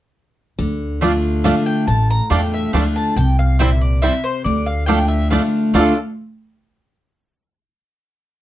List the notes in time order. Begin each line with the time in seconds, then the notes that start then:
0.59 D2 D3
1.01 D3 A3 D4 F4 D5 A5
1.44 D3 A3 D4 F4 D5 F5 A5
1.66 G5
1.87 A1 A2 A5
2.10 A#5
2.30 E2 D3 A3 D4 F4 D5 G5 A5
2.54 E5
2.73 D2 D3 A3 D4 F4 D5 F5 A5
2.96 A5
3.16 C2 C3 G5
3.39 F5
3.59 A#2 G3 C4 E4 C5 E5 G5
3.81 D5
4.02 C3 G3 C4 E4 C5 E5 G5
4.24 C5
4.44 D2 D3 D5
4.66 F5
4.86 D3 A3 D4 F4 D5 G5 A5
5.08 E5
5.30 D3 A3 D4 F4 D5 F5 A5
5.74 D2 D3 A3 D4 F4 D5 F5 A5
5.79 F4 A4